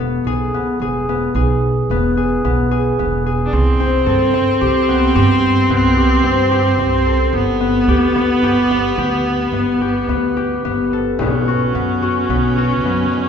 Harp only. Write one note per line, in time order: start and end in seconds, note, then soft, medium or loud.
0.00 0.54 B3 medium
0.00 0.33 G4 medium
0.00 0.33 A4 medium
0.27 0.81 G#4 medium
0.54 1.09 B3 medium
0.82 1.35 G#4 medium
1.09 1.90 B3 medium
1.35 2.17 G#4 medium
1.91 2.44 B3 medium
2.17 2.71 G#4 medium
2.45 2.99 B3 medium
2.71 3.26 G#4 medium
2.99 3.86 B3 medium
3.26 4.12 G#4 medium
3.80 4.33 C4 medium
4.06 6.26 A4 medium
4.34 4.95 C4 medium
4.61 5.15 G4 medium
4.89 5.70 B3 medium
5.15 5.96 G4 medium
5.70 6.30 B3 medium
5.97 6.51 G4 medium
6.24 6.79 C4 medium
6.51 7.88 G4 medium
6.79 7.67 C4 medium
7.06 9.26 A4 medium
7.61 8.15 B3 medium
7.89 8.43 G4 medium
8.16 8.71 B3 medium
8.44 8.98 G4 medium
8.71 9.53 B3 medium
8.98 9.81 G4 medium
9.53 10.08 B3 medium
9.81 10.36 G4 medium
10.09 10.64 B3 medium
10.37 11.54 G4 medium
10.65 11.20 B3 medium
10.93 13.13 A4 medium
11.20 11.74 B3 medium
11.48 12.02 F#4 medium
11.75 12.29 B3 medium
12.02 12.57 F#4 medium
12.30 12.85 B3 medium
12.58 13.29 F#4 medium
12.85 13.29 B3 medium